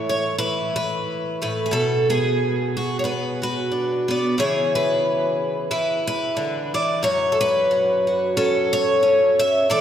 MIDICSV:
0, 0, Header, 1, 2, 480
1, 0, Start_track
1, 0, Tempo, 664452
1, 1243, Time_signature, 4, 2, 24, 8
1, 7086, End_track
2, 0, Start_track
2, 0, Title_t, "Twelve-string acoustic guitar"
2, 0, Program_c, 0, 25
2, 0, Note_on_c, 0, 45, 74
2, 0, Note_on_c, 0, 52, 52
2, 0, Note_on_c, 0, 57, 56
2, 69, Note_on_c, 0, 73, 80
2, 275, Note_off_c, 0, 52, 0
2, 275, Note_off_c, 0, 73, 0
2, 278, Note_on_c, 0, 71, 95
2, 283, Note_on_c, 0, 52, 54
2, 540, Note_off_c, 0, 71, 0
2, 548, Note_on_c, 0, 71, 94
2, 756, Note_off_c, 0, 45, 0
2, 1021, Note_off_c, 0, 71, 0
2, 1024, Note_on_c, 0, 45, 62
2, 1030, Note_on_c, 0, 71, 79
2, 1198, Note_on_c, 0, 68, 67
2, 1237, Note_on_c, 0, 47, 66
2, 1240, Note_off_c, 0, 45, 0
2, 1243, Note_off_c, 0, 57, 0
2, 1243, Note_off_c, 0, 68, 0
2, 1243, Note_off_c, 0, 71, 0
2, 1244, Note_off_c, 0, 52, 0
2, 1247, Note_on_c, 0, 69, 94
2, 1513, Note_off_c, 0, 69, 0
2, 1514, Note_on_c, 0, 59, 55
2, 1518, Note_on_c, 0, 68, 84
2, 1999, Note_on_c, 0, 66, 67
2, 2158, Note_off_c, 0, 66, 0
2, 2161, Note_on_c, 0, 73, 55
2, 2188, Note_off_c, 0, 59, 0
2, 2195, Note_on_c, 0, 59, 57
2, 2200, Note_off_c, 0, 73, 0
2, 2203, Note_on_c, 0, 71, 65
2, 2467, Note_off_c, 0, 68, 0
2, 2469, Note_off_c, 0, 71, 0
2, 2470, Note_on_c, 0, 66, 44
2, 2480, Note_on_c, 0, 71, 82
2, 2683, Note_on_c, 0, 62, 42
2, 2940, Note_off_c, 0, 59, 0
2, 2949, Note_on_c, 0, 59, 59
2, 2956, Note_off_c, 0, 71, 0
2, 2966, Note_on_c, 0, 74, 70
2, 3138, Note_off_c, 0, 59, 0
2, 3138, Note_off_c, 0, 66, 0
2, 3139, Note_off_c, 0, 62, 0
2, 3162, Note_off_c, 0, 47, 0
2, 3164, Note_on_c, 0, 49, 72
2, 3168, Note_on_c, 0, 52, 46
2, 3172, Note_off_c, 0, 74, 0
2, 3172, Note_on_c, 0, 64, 53
2, 3176, Note_on_c, 0, 73, 91
2, 3180, Note_on_c, 0, 68, 51
2, 3431, Note_off_c, 0, 73, 0
2, 3434, Note_on_c, 0, 71, 86
2, 4115, Note_off_c, 0, 71, 0
2, 4116, Note_off_c, 0, 52, 0
2, 4124, Note_on_c, 0, 52, 68
2, 4125, Note_off_c, 0, 49, 0
2, 4126, Note_on_c, 0, 71, 78
2, 4380, Note_off_c, 0, 71, 0
2, 4388, Note_on_c, 0, 71, 98
2, 4599, Note_on_c, 0, 50, 66
2, 4863, Note_off_c, 0, 52, 0
2, 4869, Note_off_c, 0, 50, 0
2, 4869, Note_off_c, 0, 71, 0
2, 4870, Note_on_c, 0, 52, 57
2, 4872, Note_on_c, 0, 74, 77
2, 5063, Note_off_c, 0, 64, 0
2, 5067, Note_off_c, 0, 68, 0
2, 5076, Note_on_c, 0, 42, 66
2, 5081, Note_off_c, 0, 74, 0
2, 5084, Note_on_c, 0, 73, 97
2, 5085, Note_off_c, 0, 52, 0
2, 5289, Note_on_c, 0, 69, 69
2, 5347, Note_off_c, 0, 69, 0
2, 5350, Note_on_c, 0, 71, 94
2, 5569, Note_on_c, 0, 66, 47
2, 5775, Note_off_c, 0, 73, 0
2, 5822, Note_off_c, 0, 66, 0
2, 5831, Note_on_c, 0, 66, 44
2, 6044, Note_off_c, 0, 71, 0
2, 6045, Note_on_c, 0, 61, 63
2, 6047, Note_on_c, 0, 69, 88
2, 6306, Note_on_c, 0, 73, 100
2, 6512, Note_off_c, 0, 61, 0
2, 6521, Note_on_c, 0, 61, 61
2, 6784, Note_off_c, 0, 73, 0
2, 6787, Note_on_c, 0, 76, 98
2, 6792, Note_off_c, 0, 69, 0
2, 6977, Note_off_c, 0, 61, 0
2, 6978, Note_off_c, 0, 66, 0
2, 6999, Note_off_c, 0, 42, 0
2, 7002, Note_off_c, 0, 76, 0
2, 7005, Note_on_c, 0, 52, 72
2, 7008, Note_on_c, 0, 57, 55
2, 7011, Note_on_c, 0, 69, 52
2, 7013, Note_on_c, 0, 74, 97
2, 7086, Note_off_c, 0, 52, 0
2, 7086, Note_off_c, 0, 57, 0
2, 7086, Note_off_c, 0, 69, 0
2, 7086, Note_off_c, 0, 74, 0
2, 7086, End_track
0, 0, End_of_file